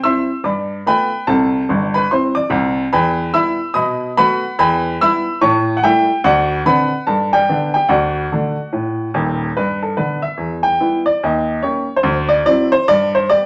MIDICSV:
0, 0, Header, 1, 2, 480
1, 0, Start_track
1, 0, Key_signature, 1, "major"
1, 0, Tempo, 414365
1, 1479, Time_signature, 4, 2, 24, 8
1, 15590, End_track
2, 0, Start_track
2, 0, Title_t, "Upright piano"
2, 0, Program_c, 0, 0
2, 41, Note_on_c, 0, 55, 43
2, 41, Note_on_c, 0, 88, 99
2, 52, Note_on_c, 0, 60, 51
2, 55, Note_on_c, 0, 84, 67
2, 57, Note_on_c, 0, 64, 51
2, 59, Note_on_c, 0, 76, 75
2, 305, Note_off_c, 0, 55, 0
2, 312, Note_off_c, 0, 60, 0
2, 316, Note_off_c, 0, 64, 0
2, 448, Note_off_c, 0, 88, 0
2, 494, Note_off_c, 0, 84, 0
2, 496, Note_off_c, 0, 76, 0
2, 506, Note_on_c, 0, 43, 66
2, 512, Note_on_c, 0, 86, 75
2, 516, Note_on_c, 0, 74, 59
2, 525, Note_on_c, 0, 83, 62
2, 920, Note_off_c, 0, 43, 0
2, 923, Note_off_c, 0, 86, 0
2, 964, Note_off_c, 0, 74, 0
2, 969, Note_off_c, 0, 83, 0
2, 1001, Note_on_c, 0, 59, 59
2, 1005, Note_on_c, 0, 57, 51
2, 1010, Note_on_c, 0, 83, 104
2, 1013, Note_on_c, 0, 65, 54
2, 1018, Note_on_c, 0, 79, 77
2, 1020, Note_on_c, 0, 71, 79
2, 1265, Note_off_c, 0, 59, 0
2, 1267, Note_off_c, 0, 57, 0
2, 1274, Note_off_c, 0, 65, 0
2, 1413, Note_off_c, 0, 83, 0
2, 1456, Note_off_c, 0, 79, 0
2, 1457, Note_off_c, 0, 71, 0
2, 1473, Note_on_c, 0, 81, 94
2, 1475, Note_on_c, 0, 36, 78
2, 1480, Note_on_c, 0, 48, 79
2, 1484, Note_on_c, 0, 69, 71
2, 1861, Note_off_c, 0, 36, 0
2, 1864, Note_off_c, 0, 48, 0
2, 1956, Note_on_c, 0, 43, 75
2, 1963, Note_on_c, 0, 31, 87
2, 2139, Note_off_c, 0, 81, 0
2, 2215, Note_off_c, 0, 69, 0
2, 2250, Note_on_c, 0, 83, 93
2, 2267, Note_on_c, 0, 71, 72
2, 2342, Note_off_c, 0, 43, 0
2, 2346, Note_off_c, 0, 31, 0
2, 2407, Note_off_c, 0, 83, 0
2, 2431, Note_off_c, 0, 71, 0
2, 2446, Note_on_c, 0, 84, 75
2, 2447, Note_on_c, 0, 55, 47
2, 2451, Note_on_c, 0, 64, 43
2, 2456, Note_on_c, 0, 60, 47
2, 2462, Note_on_c, 0, 72, 67
2, 2698, Note_off_c, 0, 84, 0
2, 2709, Note_off_c, 0, 55, 0
2, 2712, Note_off_c, 0, 64, 0
2, 2715, Note_off_c, 0, 60, 0
2, 2721, Note_on_c, 0, 86, 102
2, 2731, Note_off_c, 0, 72, 0
2, 2733, Note_on_c, 0, 74, 63
2, 2882, Note_off_c, 0, 86, 0
2, 2891, Note_on_c, 0, 48, 87
2, 2897, Note_on_c, 0, 36, 93
2, 2904, Note_off_c, 0, 74, 0
2, 3286, Note_off_c, 0, 48, 0
2, 3290, Note_off_c, 0, 36, 0
2, 3390, Note_on_c, 0, 83, 93
2, 3392, Note_on_c, 0, 40, 99
2, 3401, Note_on_c, 0, 79, 75
2, 3402, Note_on_c, 0, 71, 71
2, 3802, Note_off_c, 0, 83, 0
2, 3803, Note_off_c, 0, 40, 0
2, 3846, Note_off_c, 0, 79, 0
2, 3847, Note_off_c, 0, 71, 0
2, 3856, Note_on_c, 0, 55, 57
2, 3865, Note_on_c, 0, 64, 65
2, 3866, Note_on_c, 0, 59, 53
2, 3866, Note_on_c, 0, 88, 105
2, 3872, Note_on_c, 0, 83, 82
2, 3875, Note_on_c, 0, 76, 94
2, 4126, Note_off_c, 0, 55, 0
2, 4133, Note_off_c, 0, 64, 0
2, 4134, Note_off_c, 0, 59, 0
2, 4279, Note_off_c, 0, 88, 0
2, 4322, Note_off_c, 0, 83, 0
2, 4323, Note_off_c, 0, 76, 0
2, 4333, Note_on_c, 0, 87, 99
2, 4338, Note_on_c, 0, 47, 79
2, 4346, Note_on_c, 0, 83, 70
2, 4351, Note_on_c, 0, 75, 69
2, 4752, Note_off_c, 0, 87, 0
2, 4755, Note_off_c, 0, 47, 0
2, 4798, Note_off_c, 0, 83, 0
2, 4801, Note_off_c, 0, 75, 0
2, 4836, Note_on_c, 0, 83, 127
2, 4842, Note_on_c, 0, 57, 56
2, 4843, Note_on_c, 0, 59, 65
2, 4844, Note_on_c, 0, 66, 80
2, 4849, Note_on_c, 0, 71, 90
2, 4849, Note_on_c, 0, 78, 84
2, 5105, Note_off_c, 0, 57, 0
2, 5106, Note_off_c, 0, 59, 0
2, 5107, Note_off_c, 0, 66, 0
2, 5245, Note_off_c, 0, 83, 0
2, 5290, Note_off_c, 0, 78, 0
2, 5291, Note_off_c, 0, 71, 0
2, 5314, Note_on_c, 0, 40, 101
2, 5318, Note_on_c, 0, 83, 118
2, 5328, Note_on_c, 0, 71, 76
2, 5331, Note_on_c, 0, 79, 81
2, 5724, Note_off_c, 0, 40, 0
2, 5726, Note_off_c, 0, 83, 0
2, 5770, Note_off_c, 0, 71, 0
2, 5772, Note_off_c, 0, 79, 0
2, 5800, Note_on_c, 0, 55, 52
2, 5808, Note_on_c, 0, 88, 117
2, 5814, Note_on_c, 0, 59, 62
2, 5819, Note_on_c, 0, 83, 94
2, 5822, Note_on_c, 0, 64, 59
2, 5826, Note_on_c, 0, 76, 88
2, 6064, Note_off_c, 0, 55, 0
2, 6074, Note_off_c, 0, 59, 0
2, 6079, Note_off_c, 0, 64, 0
2, 6212, Note_off_c, 0, 88, 0
2, 6256, Note_off_c, 0, 83, 0
2, 6259, Note_off_c, 0, 76, 0
2, 6271, Note_on_c, 0, 45, 94
2, 6272, Note_on_c, 0, 85, 101
2, 6285, Note_on_c, 0, 81, 65
2, 6287, Note_on_c, 0, 73, 79
2, 6631, Note_off_c, 0, 85, 0
2, 6672, Note_off_c, 0, 81, 0
2, 6673, Note_off_c, 0, 73, 0
2, 6682, Note_off_c, 0, 45, 0
2, 6682, Note_on_c, 0, 78, 83
2, 6751, Note_off_c, 0, 78, 0
2, 6756, Note_on_c, 0, 55, 70
2, 6759, Note_on_c, 0, 79, 109
2, 6763, Note_on_c, 0, 57, 60
2, 6767, Note_on_c, 0, 76, 84
2, 6769, Note_on_c, 0, 64, 76
2, 6769, Note_on_c, 0, 67, 81
2, 7020, Note_off_c, 0, 55, 0
2, 7026, Note_off_c, 0, 57, 0
2, 7030, Note_off_c, 0, 64, 0
2, 7167, Note_off_c, 0, 79, 0
2, 7209, Note_off_c, 0, 76, 0
2, 7210, Note_off_c, 0, 67, 0
2, 7229, Note_on_c, 0, 38, 93
2, 7232, Note_on_c, 0, 78, 101
2, 7243, Note_on_c, 0, 66, 71
2, 7243, Note_on_c, 0, 74, 80
2, 7641, Note_off_c, 0, 38, 0
2, 7642, Note_off_c, 0, 78, 0
2, 7687, Note_off_c, 0, 66, 0
2, 7687, Note_off_c, 0, 74, 0
2, 7711, Note_on_c, 0, 50, 55
2, 7714, Note_on_c, 0, 62, 58
2, 7715, Note_on_c, 0, 83, 104
2, 7722, Note_on_c, 0, 60, 50
2, 7724, Note_on_c, 0, 71, 78
2, 7725, Note_on_c, 0, 78, 73
2, 7977, Note_off_c, 0, 50, 0
2, 7978, Note_off_c, 0, 62, 0
2, 7984, Note_off_c, 0, 60, 0
2, 8124, Note_off_c, 0, 83, 0
2, 8167, Note_off_c, 0, 71, 0
2, 8168, Note_off_c, 0, 78, 0
2, 8186, Note_on_c, 0, 81, 74
2, 8189, Note_on_c, 0, 43, 81
2, 8197, Note_on_c, 0, 69, 53
2, 8446, Note_off_c, 0, 81, 0
2, 8476, Note_off_c, 0, 69, 0
2, 8490, Note_on_c, 0, 79, 100
2, 8497, Note_on_c, 0, 67, 71
2, 8503, Note_on_c, 0, 74, 65
2, 8600, Note_off_c, 0, 43, 0
2, 8680, Note_on_c, 0, 50, 59
2, 8680, Note_on_c, 0, 59, 67
2, 8694, Note_on_c, 0, 62, 68
2, 8901, Note_off_c, 0, 79, 0
2, 8943, Note_off_c, 0, 50, 0
2, 8943, Note_off_c, 0, 59, 0
2, 8943, Note_off_c, 0, 67, 0
2, 8946, Note_off_c, 0, 74, 0
2, 8953, Note_off_c, 0, 62, 0
2, 8966, Note_on_c, 0, 79, 87
2, 8991, Note_on_c, 0, 67, 68
2, 9123, Note_off_c, 0, 79, 0
2, 9135, Note_on_c, 0, 78, 74
2, 9138, Note_on_c, 0, 38, 85
2, 9151, Note_off_c, 0, 67, 0
2, 9153, Note_on_c, 0, 66, 69
2, 9158, Note_on_c, 0, 74, 73
2, 9553, Note_off_c, 0, 38, 0
2, 9638, Note_on_c, 0, 50, 52
2, 9645, Note_on_c, 0, 57, 55
2, 9649, Note_on_c, 0, 62, 66
2, 9901, Note_off_c, 0, 50, 0
2, 9906, Note_off_c, 0, 57, 0
2, 9909, Note_off_c, 0, 62, 0
2, 10108, Note_on_c, 0, 45, 60
2, 10519, Note_off_c, 0, 45, 0
2, 10590, Note_on_c, 0, 27, 81
2, 10590, Note_on_c, 0, 39, 83
2, 10622, Note_off_c, 0, 78, 0
2, 10847, Note_off_c, 0, 66, 0
2, 10850, Note_off_c, 0, 74, 0
2, 10976, Note_off_c, 0, 27, 0
2, 10976, Note_off_c, 0, 39, 0
2, 11082, Note_on_c, 0, 71, 78
2, 11086, Note_on_c, 0, 43, 74
2, 11334, Note_off_c, 0, 71, 0
2, 11382, Note_on_c, 0, 69, 68
2, 11489, Note_off_c, 0, 43, 0
2, 11532, Note_off_c, 0, 69, 0
2, 11549, Note_on_c, 0, 71, 77
2, 11557, Note_on_c, 0, 50, 47
2, 11560, Note_on_c, 0, 59, 51
2, 11560, Note_on_c, 0, 62, 53
2, 11807, Note_off_c, 0, 71, 0
2, 11820, Note_off_c, 0, 50, 0
2, 11822, Note_off_c, 0, 62, 0
2, 11823, Note_off_c, 0, 59, 0
2, 11843, Note_on_c, 0, 76, 84
2, 12018, Note_on_c, 0, 40, 63
2, 12256, Note_off_c, 0, 76, 0
2, 12315, Note_on_c, 0, 79, 94
2, 12433, Note_off_c, 0, 40, 0
2, 12516, Note_on_c, 0, 64, 56
2, 12517, Note_on_c, 0, 55, 47
2, 12522, Note_on_c, 0, 59, 53
2, 12731, Note_off_c, 0, 79, 0
2, 12779, Note_off_c, 0, 64, 0
2, 12780, Note_off_c, 0, 55, 0
2, 12784, Note_off_c, 0, 59, 0
2, 12810, Note_on_c, 0, 74, 94
2, 12965, Note_off_c, 0, 74, 0
2, 13013, Note_on_c, 0, 39, 90
2, 13018, Note_on_c, 0, 75, 74
2, 13413, Note_off_c, 0, 39, 0
2, 13416, Note_off_c, 0, 75, 0
2, 13463, Note_on_c, 0, 58, 55
2, 13466, Note_on_c, 0, 73, 83
2, 13476, Note_on_c, 0, 61, 51
2, 13482, Note_on_c, 0, 67, 58
2, 13730, Note_off_c, 0, 58, 0
2, 13740, Note_off_c, 0, 61, 0
2, 13744, Note_off_c, 0, 67, 0
2, 13801, Note_off_c, 0, 73, 0
2, 13860, Note_on_c, 0, 72, 86
2, 13938, Note_on_c, 0, 38, 88
2, 14193, Note_off_c, 0, 72, 0
2, 14232, Note_on_c, 0, 74, 100
2, 14353, Note_off_c, 0, 38, 0
2, 14394, Note_off_c, 0, 74, 0
2, 14429, Note_on_c, 0, 54, 52
2, 14434, Note_on_c, 0, 74, 112
2, 14440, Note_on_c, 0, 64, 70
2, 14444, Note_on_c, 0, 60, 60
2, 14689, Note_off_c, 0, 74, 0
2, 14694, Note_off_c, 0, 54, 0
2, 14703, Note_off_c, 0, 64, 0
2, 14705, Note_off_c, 0, 60, 0
2, 14733, Note_on_c, 0, 72, 101
2, 14886, Note_off_c, 0, 72, 0
2, 14922, Note_on_c, 0, 74, 121
2, 14924, Note_on_c, 0, 43, 90
2, 15173, Note_off_c, 0, 74, 0
2, 15230, Note_on_c, 0, 72, 95
2, 15327, Note_off_c, 0, 43, 0
2, 15376, Note_off_c, 0, 72, 0
2, 15401, Note_on_c, 0, 74, 108
2, 15405, Note_on_c, 0, 55, 58
2, 15410, Note_on_c, 0, 59, 48
2, 15410, Note_on_c, 0, 67, 60
2, 15590, Note_off_c, 0, 55, 0
2, 15590, Note_off_c, 0, 59, 0
2, 15590, Note_off_c, 0, 67, 0
2, 15590, Note_off_c, 0, 74, 0
2, 15590, End_track
0, 0, End_of_file